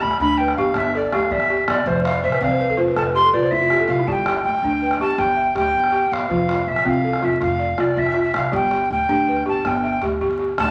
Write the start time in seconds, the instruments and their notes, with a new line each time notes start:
Already playing: balafon G4
0.01 upright bass D2, recorder B5, calabash click
0.11 calabash click
0.20 upright bass D2, balafon D4, recorder B5, calabash thump
0.30 calabash click
0.37 balafon B4, recorder G5
0.48 calabash click
0.56 upright bass G1, balafon G4, recorder F5, calabash click
0.66 calabash click
0.74 upright bass G1, recorder E5, calabash thump, calabash click
0.95 balafon A4, recorder D5
1.03 calabash click
1.12 upright bass D2, balafon G4, recorder F5, calabash click
1.30 upright bass G1, balafon D5, recorder E5, calabash thump
1.40 calabash click
1.49 balafon G4, calabash click
1.59 calabash click
1.67 upright bass G1, recorder D5, calabash click
1.77 calabash click
1.86 upright bass F1, balafon F3 E5, recorder C5, calabash thump
1.96 balafon D5
2.04 balafon E5, recorder F5, calabash click
2.15 balafon D5
2.23 upright bass C2, balafon C5, recorder E5
2.32 balafon B4, calabash click
2.41 upright bass C2, balafon C4 D5, recorder F5, calabash thump, calabash click
2.51 balafon C5
2.60 balafon B4, calabash click
2.70 balafon A4
2.77 upright bass F1, balafon F4 C5, calabash click
2.88 balafon B4
2.96 upright bass F1, balafon A4, recorder A5, calabash thump, calabash click
3.05 balafon B4
3.14 balafon G4, recorder C6, calabash thump
3.24 balafon A4
3.32 upright bass C2, balafon F4 B4, recorder D5, calabash thump
3.43 balafon C5
3.50 upright bass F1, balafon E4, recorder E5, calabash thump
3.61 balafon F4
3.70 balafon F4 G4, calabash click
3.80 balafon A4
3.88 upright bass C2, balafon F4, recorder F5, calabash click
3.99 balafon E4
4.07 upright bass G1, balafon G3 G4, recorder A5, calabash thump
4.12 recorder G5
4.26 balafon G4, calabash click
4.44 upright bass D2, recorder G5, calabash click
4.55 calabash click
4.63 upright bass D2, balafon D4, calabash thump
4.73 calabash click
4.82 balafon B4
4.91 calabash click
5.00 upright bass G1, balafon G4, recorder A5, calabash click
5.10 calabash click
5.18 upright bass G1, balafon G4, recorder G5, calabash thump, calabash click
5.37 balafon E5
5.47 calabash click
5.55 upright bass D2, balafon G4, recorder G5, calabash click
5.74 upright bass G1, calabash thump
5.84 calabash click
5.92 balafon G4, calabash click
6.03 calabash click
6.12 upright bass G1, recorder F5, calabash click
6.22 calabash click
6.29 upright bass F1, balafon F3 F4, calabash thump
6.49 balafon F4, calabash click
6.67 upright bass C2, recorder E5, calabash click
6.76 calabash click
6.85 upright bass C2, balafon C4 F4, recorder F5, calabash thump
6.96 calabash click
7.04 balafon A4
7.13 calabash click
7.22 upright bass F1, balafon F4, recorder E5, calabash click
7.33 calabash click
7.41 upright bass F1, balafon F4, recorder F5, calabash thump, calabash click
7.59 balafon D5
7.69 calabash click
7.78 upright bass C2, balafon F4, recorder D5, calabash click
7.96 upright bass F1, balafon F4, recorder E5, calabash thump
8.06 recorder E5, calabash click
8.14 balafon F4, calabash click
8.23 recorder E5, calabash click
8.34 upright bass C2, recorder F5, calabash click
8.52 upright bass G1, balafon G3 G4, recorder G5, calabash thump
8.71 balafon G4, calabash click
8.90 upright bass D2, recorder G5, calabash click
8.99 calabash click
9.09 upright bass D2, balafon D4 G4, calabash thump
9.18 calabash click
9.29 balafon B4
9.37 calabash click
9.46 upright bass G1, balafon G4, recorder A5, calabash click
9.55 calabash click
9.65 upright bass G1, recorder G5, calabash thump, calabash click
9.84 balafon E5
9.92 calabash click
10.02 upright bass D2, balafon G4, calabash click
10.21 upright bass G1, balafon G4, calabash thump
10.31 calabash click
10.39 balafon G4, calabash click
10.49 calabash click
10.58 upright bass D2, recorder A5, calabash click
10.67 calabash click